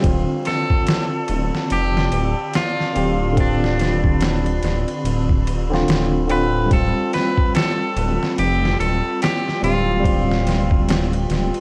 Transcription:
0.00 D3 C4 F4 D5 A5, kick, ride
0.04 D1 C4 F4
0.45 A4, snare, ride
0.70 kick
0.87 snare, ride
1.28 D1, ride
1.55 snare
1.70 F1 G4, ride
1.97 snare
2.12 D1, ride
2.54 F4, snare, ride
2.80 snare
2.93 D1 D3 C4 G4, ride
3.33 D3
3.37 C4 D4 B5, kick, ride
3.41 F4
3.64 snare
3.79 snare, ride
4.04 kick
4.21 snare, ride
4.46 ride
4.63 D1, snare, ride
4.88 ride
5.04 D1, ride
5.29 kick
5.47 ride
5.70 D3 C4, snare
5.74 F4
5.88 D1, snare, ride
6.27 D3 C4 B4, ride
6.32 F4
6.66 G3
6.70 D1 C4 A4 G5, kick, ride
6.75 F4
7.13 B4, snare, ride
7.37 kick
7.55 A4, snare, ride
7.96 D1, ride
8.23 snare
8.38 F1 G4, ride
8.65 snare
8.80 D1 A4, ride
9.22 G4, snare, ride
9.48 snare
9.61 D1 G3 C4 F4, ride
9.65 G4
10.00 G3 C4
10.04 F4, kick, ride
10.31 snare
10.47 snare, ride
10.71 kick
10.89 snare, ride
11.13 ride
11.29 D1, snare, ride
11.54 ride

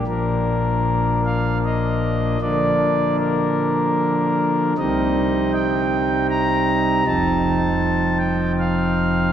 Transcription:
0.07 A#1 A#2 F3 A#3 D4 A#4
1.25 F5
1.65 D#5
2.41 D3 F3 A#3 D4 D5
3.19 A#4
4.78 C2 C3 G3 C4 D#4 D#5
5.53 G5
6.29 A#5
7.06 F1 F2 F3 C4 D#4 A5
8.19 G5
8.59 F5

